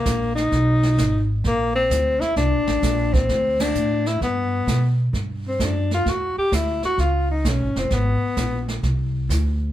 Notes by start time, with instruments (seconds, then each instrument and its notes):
Already playing: tenor saxophone A#3
0.06 upright bass A#1, kick, snare, hi-hat pedal
0.36 tenor saxophone D#4, snare
0.52 upright bass B1, brush sweep, kick, snare
0.83 snare
0.97 upright bass G#1, kick, snare, hi-hat pedal
1.44 upright bass A#1, tenor saxophone A#3, brush sweep, kick, snare
1.75 tenor saxophone C4
1.90 upright bass D2, kick, snare, hi-hat pedal
2.21 tenor saxophone E4, muted upright bass stroke, snare
2.36 upright bass C2, tenor saxophone D4, brush sweep, kick, snare
2.52 upright bass A#1
2.67 upright bass A1, snare
2.82 upright bass A#1, kick, snare, hi-hat pedal
3.13 tenor saxophone C4, kick, snare
3.29 upright bass D2, brush sweep, kick, snare
3.60 tenor saxophone D4, snare, ride
3.75 upright bass A2, hi-hat pedal
4.06 tenor saxophone E4, snare
4.21 upright bass G2, tenor saxophone B3, brush sweep, kick, snare
4.67 upright bass B2, kick, snare, hi-hat pedal
5.13 upright bass G2, brush sweep, kick, snare
5.48 tenor saxophone C4
5.60 upright bass F#2, kick, snare, hi-hat pedal
5.64 tenor saxophone D4
5.91 tenor saxophone F4, snare
6.06 upright bass E2, brush sweep, kick, snare
6.10 tenor saxophone F#4
6.38 tenor saxophone G4, muted upright bass stroke
6.52 upright bass D2, tenor saxophone E4, kick, snare, hi-hat pedal
6.83 tenor saxophone F#4, muted upright bass stroke, snare
6.98 upright bass C#2, tenor saxophone F4, brush sweep, kick, snare
7.31 tenor saxophone D#4
7.44 upright bass B1, kick, snare, hi-hat pedal
7.48 tenor saxophone C#4
7.60 upright bass G#1
7.76 upright bass F1, tenor saxophone C4, snare
7.90 upright bass G#1, tenor saxophone B3, brush sweep, kick, snare
8.37 upright bass A#1, kick, snare, hi-hat pedal
8.68 snare
8.83 upright bass C2, brush sweep, kick, snare
9.29 upright bass D2, kick, snare, hi-hat pedal